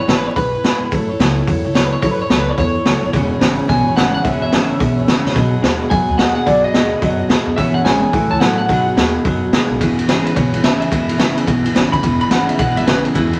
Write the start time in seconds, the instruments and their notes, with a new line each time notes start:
0.08 upright bass G#1, steel-string acoustic guitar C#3 E3 B3 E4 G#4 B4, clean electric guitar C#5, snare, open hi-hat
0.17 clean electric guitar B4
0.26 steel-string acoustic guitar B3 E4 G#4 B4, clean electric guitar C#5
0.36 upright bass B1, steel-string acoustic guitar B3 E4 G#4 B4, clean electric guitar B4, kick, open hi-hat
0.54 steel-string acoustic guitar B3 E4 G#4 B4
0.64 upright bass G#1, steel-string acoustic guitar C#3 E3 B3 E4 G#4 B4, snare, open hi-hat
0.81 upright bass G#1, steel-string acoustic guitar B3 E4 G#4 B4
0.91 upright bass A1, steel-string acoustic guitar F#3 A3 E4 A4 C#5, kick, open hi-hat
1.09 steel-string acoustic guitar E4 A4 C#5
1.19 upright bass C#2, steel-string acoustic guitar F#3 A3 E4 A4 C#5, snare, open hi-hat
1.37 steel-string acoustic guitar E4 A4 C#5
1.47 upright bass E2, steel-string acoustic guitar F#3 E4 A4 C#5, kick, open hi-hat
1.64 upright bass C#2, steel-string acoustic guitar E4 A4 C#5
1.74 upright bass C#2, steel-string acoustic guitar F#3 A3 E4 A4 C#5, clean electric guitar C#5, snare, open hi-hat
1.84 clean electric guitar B4
1.92 steel-string acoustic guitar E4 A4 C#5, clean electric guitar C#5
2.02 upright bass A1, steel-string acoustic guitar F#3 A3 E4 A4 C#5, clean electric guitar C#5, kick, open hi-hat
2.11 clean electric guitar B4
2.19 steel-string acoustic guitar E4 A4 C#5, clean electric guitar C#5
2.30 upright bass C#2, steel-string acoustic guitar F#3 A3 E4 A4 C#5, clean electric guitar C#5, snare, open hi-hat
2.40 clean electric guitar B4
2.49 steel-string acoustic guitar E4 A4 C#5, clean electric guitar C#5
2.57 upright bass E2, steel-string acoustic guitar F#3 E4 A4 C#5, clean electric guitar C#5, kick, open hi-hat
2.76 steel-string acoustic guitar E4 A4 C#5
2.85 upright bass C#2, steel-string acoustic guitar F#3 A3 E4 A4 C#5, snare, open hi-hat
3.03 upright bass F#1, steel-string acoustic guitar E4 A4 C#5
3.13 upright bass E1, clean electric guitar E2 B2, steel-string acoustic guitar C#3 E3 B3 C#4 G#4 C#5, kick, open hi-hat
3.31 steel-string acoustic guitar B3 C#4 G#4 C#5
3.39 upright bass G#1, clean electric guitar E2 C#3, steel-string acoustic guitar C#3 E3 B3 C#4 G#4 C#5, snare, open hi-hat
3.58 steel-string acoustic guitar B3 C#4 G#4 C#5
3.68 upright bass B1, clean electric guitar E2 B2 G#5, steel-string acoustic guitar B3 C#4 G#4 C#5, kick, open hi-hat
3.87 upright bass G#1, steel-string acoustic guitar B3 C#4 G#4 C#5
3.96 upright bass G#1, clean electric guitar E2 C#3 F#5, steel-string acoustic guitar C#3 E3 B3 C#4 G#4 C#5, snare, open hi-hat
4.13 steel-string acoustic guitar B3 C#4 G#4 C#5, clean electric guitar F#5
4.24 upright bass E1, clean electric guitar E2 B2 E5, steel-string acoustic guitar C#3 E3 B3 C#4 G#4 C#5, kick, open hi-hat
4.42 steel-string acoustic guitar B3 C#4 G#4 C#5, clean electric guitar E5
4.52 upright bass G#1, clean electric guitar E2 C#3, steel-string acoustic guitar C#3 E3 B3 C#4 G#4 C#5, snare, open hi-hat
4.70 steel-string acoustic guitar B3 C#4 G#4 C#5
4.79 upright bass B1, clean electric guitar E2 B2, steel-string acoustic guitar B3 C#4 G#4 C#5, kick, open hi-hat
4.97 steel-string acoustic guitar B3 C#4 G#4 C#5
5.07 upright bass G#1, clean electric guitar E2 C#3, steel-string acoustic guitar C#3 E3 B3 C#4 G#4 C#5, snare, open hi-hat
5.25 upright bass E1, steel-string acoustic guitar B3 C#4 G#4 C#5, snare
5.35 upright bass B1, clean electric guitar B2 F#3, steel-string acoustic guitar B3 F#4 G#4 D#5, kick, open hi-hat
5.53 steel-string acoustic guitar F#4 G#4 D#5
5.62 upright bass D#2, clean electric guitar B2 G#3, steel-string acoustic guitar B3 F#4 G#4 D#5, snare, open hi-hat
5.81 steel-string acoustic guitar F#4 G#4 D#5
5.90 upright bass F#2, clean electric guitar B2 F#3 G#5, steel-string acoustic guitar B3 F#4 G#4 D#5, kick, open hi-hat
6.08 upright bass D#2, steel-string acoustic guitar F#4 G#4 D#5
6.18 upright bass D#2, clean electric guitar B2 G#3 F#5, steel-string acoustic guitar B3 F#4 G#4 D#5, snare, open hi-hat
6.35 steel-string acoustic guitar F#4 G#4 D#5, clean electric guitar F#5
6.46 upright bass B1, clean electric guitar B2 F#3 D5, steel-string acoustic guitar B3 F#4 G#4 D#5, kick, open hi-hat
6.64 steel-string acoustic guitar F#4 G#4 D#5, clean electric guitar D#5
6.74 upright bass D#2, clean electric guitar B2 G#3, steel-string acoustic guitar B3 F#4 G#4 D#5, snare, open hi-hat
6.92 steel-string acoustic guitar F#4 G#4 D#5
7.01 upright bass F#2, clean electric guitar B2 F#3, steel-string acoustic guitar B3 F#4 G#4 D#5, kick, open hi-hat
7.19 steel-string acoustic guitar F#4 G#4 D#5
7.29 upright bass D#2, clean electric guitar B2 G#3, steel-string acoustic guitar B3 F#4 G#4 D#5, snare, open hi-hat
7.47 upright bass F#2, steel-string acoustic guitar F#4 G#4 D#5
7.56 upright bass E1, clean electric guitar E2 B2 E5, steel-string acoustic guitar C#3 E3 B3 C#4 G#4 C#5, kick, open hi-hat
7.74 steel-string acoustic guitar B3 C#4 G#4 C#5, clean electric guitar F#5
7.85 upright bass G#1, clean electric guitar E2 C#3 G#5, steel-string acoustic guitar C#3 E3 B3 C#4 G#4 C#5, snare, open hi-hat
8.02 steel-string acoustic guitar B3 C#4 G#4 C#5
8.12 upright bass A1, clean electric guitar A2 E3, steel-string acoustic guitar F#3 E4 A4 C#5, kick, open hi-hat
8.29 upright bass C#2, steel-string acoustic guitar E4 A4 C#5, clean electric guitar A5
8.40 upright bass A1, clean electric guitar A2 F#3 F#5, steel-string acoustic guitar F#3 A3 E4 A4 C#5, snare, open hi-hat
8.58 steel-string acoustic guitar E4 A4 C#5, clean electric guitar F#5
8.68 upright bass B1, clean electric guitar B2 F#3, steel-string acoustic guitar B3 D#4 F#4 G#4, kick, open hi-hat
8.86 steel-string acoustic guitar D#4 F#4 G#4
8.97 upright bass D#2, clean electric guitar B2 G#3, steel-string acoustic guitar B3 D#4 F#4 G#4, snare, open hi-hat
9.15 steel-string acoustic guitar D#4 F#4 G#4
9.25 upright bass F#2, clean electric guitar B2 F#3, steel-string acoustic guitar B3 D#4 F#4 G#4, kick, open hi-hat
9.43 steel-string acoustic guitar D#4 F#4 G#4
9.52 upright bass D#2, clean electric guitar B2 G#3, steel-string acoustic guitar B3 D#4 F#4 G#4, snare, open hi-hat
9.70 upright bass B1, steel-string acoustic guitar D#4 F#4 G#4
9.80 upright bass E1, clean electric guitar E2 B2, steel-string acoustic guitar C#3 E3 B3 E4 G#4 B4, kick, ride
9.98 steel-string acoustic guitar B3 E4 G#4 B4, ride
10.08 upright bass G#1, clean electric guitar E2 C#3 G#4, steel-string acoustic guitar C#3 E3 B3 E4 G#4 B4, snare, ride
10.25 steel-string acoustic guitar B3 E4 G#4 B4, clean electric guitar B4, ride
10.36 upright bass B1, clean electric guitar E2 B2 C#5, steel-string acoustic guitar B3 E4 G#4 B4, kick, ride
10.53 upright bass G#1, steel-string acoustic guitar B3 E4 G#4 B4, ride
10.63 upright bass G#1, clean electric guitar E2 C#3 E5, steel-string acoustic guitar C#3 E3 B3 E4 G#4 B4, snare, ride
10.80 steel-string acoustic guitar B3 E4 G#4 B4, clean electric guitar E5, ride
10.91 upright bass E1, clean electric guitar E2 B2, steel-string acoustic guitar C#3 E3 B3 E4 G#4 B4, kick, ride
11.08 steel-string acoustic guitar B3 E4 G#4 B4, ride
11.18 upright bass G#1, clean electric guitar E2 C#3, steel-string acoustic guitar C#3 E3 B3 E4 G#4 B4, snare, ride
11.36 steel-string acoustic guitar B3 E4 G#4 B4, ride
11.46 upright bass B1, clean electric guitar E2 B2, steel-string acoustic guitar B3 E4 G#4 B4, kick, ride
11.64 steel-string acoustic guitar B3 E4 G#4 B4, ride
11.74 upright bass G#1, clean electric guitar E2 C#3, steel-string acoustic guitar C#3 E3 B3 E4 G#4 B4, snare, ride
11.92 upright bass E1, steel-string acoustic guitar B3 E4 G#4 B4, clean electric guitar B5, kick, ride
12.02 upright bass E1, clean electric guitar E2 B2, steel-string acoustic guitar C#3 E3 B3 E4 G#4 B4, kick, ride
12.20 steel-string acoustic guitar B3 E4 G#4 B4, clean electric guitar B5, ride
12.30 upright bass G#1, clean electric guitar E2 C#3 F#5, steel-string acoustic guitar C#3 E3 B3 E4 G#4 B4, snare, ride
12.48 steel-string acoustic guitar B3 E4 G#4 B4, clean electric guitar E5, ride
12.59 upright bass B1, clean electric guitar E2 B2 F#5, steel-string acoustic guitar B3 E4 G#4 B4, kick, ride
12.76 upright bass G#1, steel-string acoustic guitar B3 E4 G#4 B4, clean electric guitar E5, ride
12.86 upright bass G#1, clean electric guitar E2 C#3 B4, steel-string acoustic guitar C#3 E3 B3 E4 G#4 B4, snare, ride
13.03 steel-string acoustic guitar B3 E4 G#4 B4, clean electric guitar G#4, ride
13.14 upright bass E1, clean electric guitar E2 B2 E4, steel-string acoustic guitar C#3 E3 B3 E4 G#4 B4, kick, ride
13.32 steel-string acoustic guitar B3 E4 G#4 B4, ride